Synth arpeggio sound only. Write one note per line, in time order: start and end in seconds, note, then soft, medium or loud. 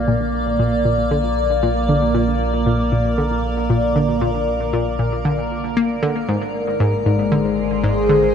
0.08 0.16 A#2 loud
0.59 0.74 A#2 loud
0.85 1.06 A#2 medium
1.11 1.20 D3 medium
1.63 1.71 A#2 loud
1.89 2.03 D3 medium
2.15 2.23 A#2 loud
2.66 2.80 A#2 medium
2.92 3.13 A#2 medium
3.18 3.27 D3 medium
3.70 3.78 A#2 loud
3.96 4.10 D3 medium
4.21 4.30 A#2 loud
4.73 4.87 A#2 medium
4.99 5.20 A#2 medium
5.25 5.33 D3 medium
5.77 5.91 A#3 loud
6.03 6.17 D3 loud
6.28 6.37 G#2 loud
6.80 6.94 G#2 loud
7.06 7.27 G#2 medium
7.32 7.40 D3 medium
7.83 7.92 G#2 loud
8.09 8.24 D3 medium